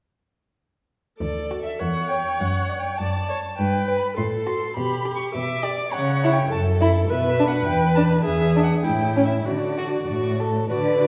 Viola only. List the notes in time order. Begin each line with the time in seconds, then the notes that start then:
1.19 A4
1.80 C#5
3.01 D5
3.29 C#5
3.59 B4
4.17 A4
4.77 G4
5.34 E5
5.64 D5
5.92 C#5
6.52 A4
7.10 B4
8.25 G#4
8.84 E4
9.45 F#4
10.70 F#4
11.00 F#4